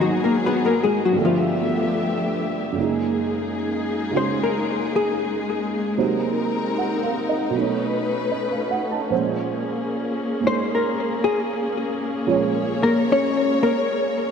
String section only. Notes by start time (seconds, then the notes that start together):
Already playing: F#3 D#4 G#4
1.16 F3 A3 B3 G4 E5
2.77 G#3 A#3 D#4 G#4
5.99 C4 D#4 A#4
7.55 A3 C#4 B4
9.11 A#3 G#4
12.26 C#5